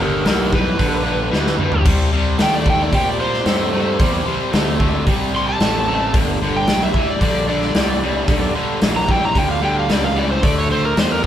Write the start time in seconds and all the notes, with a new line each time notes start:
Already playing: G1
0.00 G2 D3 G4 A#4
0.25 B1 G2 E3 G4, snare, open hi-hat
0.29 A#4
0.52 G2 E3 B4, kick
0.79 A#1 G2 D3, kick, open hi-hat
1.04 G2 D3
1.31 D2 G2 E3, snare
1.46 snare
1.59 G2 E3, mid tom
1.72 floor tom
1.85 C2 C3 G3, kick, open hi-hat, crash
2.12 C3 G3
2.38 D#2 C3 A3 G5, snare, open hi-hat
2.55 D5
2.64 C3 A3, kick
2.70 G5
2.82 D5
2.92 A#2 C3 G3 G5, kick, open hi-hat
3.09 D5
3.19 C3 G3 C5
3.33 snare
3.46 G2 C3 A3, snare, open hi-hat
3.72 C3 A3
3.99 E2 C3 G3, kick, open hi-hat
4.26 C3 G3, muted fingered electric bass stroke
4.52 D2 C3 A3, snare, open hi-hat
4.79 C3 A3, kick
5.07 C2 C3 G3, kick, open hi-hat
5.34 C3 G3 C6
5.49 A5
5.60 A1 C3 A3, snare, open hi-hat
5.87 C3 A3
6.13 G1 G2 D3, kick, open hi-hat
6.41 G2 D3
6.57 G5
6.67 B1 G2 E3, snare, open hi-hat
6.83 E5
6.94 G2 E3, muted fingered electric bass stroke, kick
7.10 D5
7.21 A#1 G2 D3 D5, kick, open hi-hat
7.47 G2 D3 D5
7.62 snare
7.75 C2 G2 E3, snare, open hi-hat
8.02 G2 E3
8.27 B1 G2 D3, kick, open hi-hat
8.55 G2 D3, muted fingered electric bass stroke
8.82 A#1 G2 E3, snare, open hi-hat
8.96 A#5
9.08 G2 E3 G5, kick
9.25 A#5
9.34 D2 G2 D3 G5, kick, open hi-hat
9.51 F5
9.62 G2 D3 G5
9.79 F5
9.88 C#2 G2 E3 D5, snare, open hi-hat
10.04 F5
10.15 G2 E3 D5
10.31 C5
10.42 D2 D3 A3 D5, kick, open hi-hat
10.58 C#5
10.70 D3 A3 C5
10.85 A#4
10.97 E2 D3 B3 C5, snare, open hi-hat
11.12 A#4